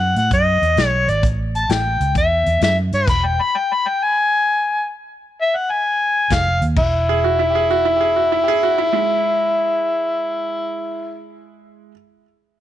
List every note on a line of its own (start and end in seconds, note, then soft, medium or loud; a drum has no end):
0.00 0.14 F#2 medium
0.00 0.17 F#5 loud
0.16 0.30 A2 medium
0.16 0.31 F#5 loud
0.16 closed hi-hat medium
0.31 0.60 F#2 medium
0.31 0.87 D#5 loud
0.31 kick loud
0.31 closed hi-hat medium
0.62 0.76 E2 medium
0.62 closed hi-hat medium
0.77 1.06 B1 medium
0.77 snare loud
0.77 closed hi-hat medium
0.87 1.11 C#5 loud
1.08 1.22 G#1 medium
1.08 1.24 D5 medium
1.08 closed hi-hat medium
1.23 1.67 A1 medium
1.23 kick loud
1.23 closed hi-hat medium
1.55 1.72 A5 medium
1.55 closed hi-hat medium
1.69 1.99 A1 medium
1.69 2.16 G5 loud
1.69 snare loud
1.69 closed hi-hat medium
2.00 2.14 C#2 medium
2.00 closed hi-hat medium
2.15 2.45 E2 medium
2.15 2.60 E5 medium
2.15 kick loud
2.15 closed hi-hat medium
2.46 2.61 E2 medium
2.46 closed hi-hat medium
2.61 2.91 F#2 medium
2.61 2.77 E5 medium
2.61 snare loud
2.61 closed hi-hat medium
2.92 3.07 G2 medium
2.92 3.08 C#5 medium
2.92 closed hi-hat medium
3.07 3.37 E1 medium
3.07 3.27 B5 loud
3.07 kick loud
3.07 closed hi-hat medium
3.07 crash medium
3.26 3.43 G5 medium
3.41 3.58 B5 loud
3.57 3.74 G5 medium
3.73 3.89 B5 medium
3.87 4.05 G5 medium
4.03 4.91 G#5 loud
5.41 5.58 E5 medium
5.56 5.72 F#5 medium
5.71 6.35 G#5 loud
6.30 6.60 F1 medium
6.30 6.62 F5 loud
6.30 kick medium
6.30 snare loud
6.30 closed hi-hat medium
6.61 6.76 D#2 medium
6.61 closed hi-hat medium
6.76 11.64 E1 medium
6.76 11.21 E4 loud
6.76 kick loud
6.76 crash medium
7.09 7.23 G#4 medium
7.24 7.38 F#4 medium
7.39 7.54 E4 medium
7.50 7.55 G4 medium
7.55 7.69 G#4 medium
7.71 7.85 F#4 medium
7.85 8.00 E4 medium
7.96 8.01 G4 medium
8.01 8.15 G#4 medium
8.16 8.30 F#4 medium
8.32 8.46 E4 medium
8.44 8.48 G4 medium
8.48 8.62 G#4 loud
8.63 8.77 F#4 medium
8.78 8.92 E4 medium
8.93 11.91 G#3 medium
8.93 11.91 E4 medium